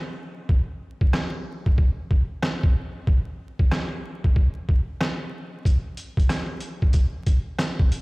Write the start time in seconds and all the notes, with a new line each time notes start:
0.49 kick
1.01 kick
1.13 cross-stick, snare
1.66 kick
1.78 kick
2.11 kick
2.42 cross-stick, snare
2.63 kick
3.07 kick
3.59 kick
3.71 cross-stick, snare
4.24 kick
4.36 kick
4.69 kick
5.01 cross-stick, snare
5.65 kick, closed hi-hat
5.97 closed hi-hat
6.17 kick, closed hi-hat
6.29 cross-stick, snare, closed hi-hat
6.61 closed hi-hat
6.82 kick
6.93 kick, closed hi-hat
7.26 kick, closed hi-hat
7.58 cross-stick, snare, closed hi-hat
7.79 kick
7.92 closed hi-hat